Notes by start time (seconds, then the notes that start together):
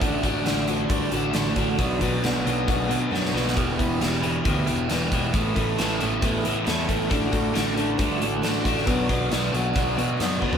0.00 A1 A2 D3 A3 D4 F#4, kick, closed hi-hat
0.23 A1 A2 D3 A3 D4 F#4, kick, closed hi-hat
0.28 A3
0.44 A1 A2 D3 A3 D4 F#4, snare, closed hi-hat
0.67 A2 D3 A3 D4 F#4, closed hi-hat
0.89 G2 A2 D3 A3 D4 F#4, kick, closed hi-hat
1.11 A1 A2 D3 A3 D4 F#4, closed hi-hat
1.33 A1 A2 D3 A3 D4 F#4, snare, closed hi-hat
1.55 A1 A2 D3 A3 D4 F#4, kick, closed hi-hat
1.78 B1 B2 F#3 B3 D4 F#4, kick, closed hi-hat
2.01 B1 B2 F#3 B3 D4 F#4, kick, closed hi-hat
2.23 B1 B2 F#3 B3 D4 F#4, snare, closed hi-hat
2.46 B1 B2 F#3 B3 D4 F#4, closed hi-hat
2.50 B3
2.67 B1 B2 F#3 B3 D4 F#4, kick, closed hi-hat
2.89 B2 F#3 B3 D4 F#4, closed hi-hat
3.12 F#2 B2 F#3 B3 D4 F#4, snare
3.25 snare
3.33 B1 B2 F#3 B3 D4 F#4, snare
3.48 snare
3.56 E1 E2 B2 E3 G3 B3 E4 G4, kick, closed hi-hat
3.78 E1 E2 B2 E3 G3 B3 E4 G4, kick, closed hi-hat
3.99 E1 E2 B2 E3 G3 B3 E4 G4, snare, closed hi-hat
4.22 E2 B2 E3 G3 B3 E4 G4, closed hi-hat
4.27 E3
4.44 D2 E2 B2 E3 B3 E4 G4, kick, closed hi-hat
4.48 G3
4.66 E1 E2 B2 E3 B3 E4 G4, closed hi-hat
4.70 E3 G3
4.89 E1 E2 B2 E3 G3 B3 E4 G4, snare, closed hi-hat
4.94 E4
5.12 E1 E2 B2 E3 G3 B3 E4 G4, kick, closed hi-hat
5.33 A1 A2 E3 A3 B3 E4 A4, kick, closed hi-hat
5.38 B3
5.55 A1 A2 E3 A3 B3 E4 A4, kick, closed hi-hat
5.60 A3
5.77 A1 A2 E3 A3 B3 E4 A4, snare, closed hi-hat
6.00 A1 A2 E3 A3 B3 E4 A4, closed hi-hat
6.21 A1 A2 E3 A3 B3 E4 A4, kick, closed hi-hat
6.43 A2 E3 A3 B3 E4 A4, closed hi-hat
6.64 E2 A2 E3 A3 B3 E4 A4, snare, closed hi-hat
6.87 A1 A2 E3 A3 B3 E4 A4, kick, closed hi-hat
7.09 A1 A2 D3 A3 D4 F#4 A4, kick, closed hi-hat
7.32 A1 D3 A3 D4 F#4 A4, kick, closed hi-hat
7.52 A1 D3 A3 D4 F#4 A4, closed hi-hat
7.57 snare
7.74 D3 A3 D4 F#4 A4, closed hi-hat
7.98 G2 A2 D3 A3 D4 F#4 A4, kick, closed hi-hat
8.20 A1 D3 A3 D4 F#4 A4, closed hi-hat
8.42 A1 D3 A3 D4 F#4 A4, snare, closed hi-hat
8.65 A1 D3 A3 D4 F#4 A4, kick, closed hi-hat
8.78 snare
8.86 B1 B2 F#3 B3 D4 F#4, kick, closed hi-hat
9.09 B1 B2 F#3 B3 D4 F#4, kick, closed hi-hat
9.31 B1 B2 F#3 B3 D4 F#4, snare, closed hi-hat
9.53 B1 B2 F#3 B3 D4 F#4, closed hi-hat
9.75 B1 B2 F#3 B3 D4 F#4, kick, closed hi-hat
9.97 B2 F#3 B3 D4 F#4, closed hi-hat
10.19 F#2 B2 F#3 B3 D4 F#4, snare, closed hi-hat
10.42 F#1 B2 F#3 B3 D4 F#4, kick
10.53 floor tom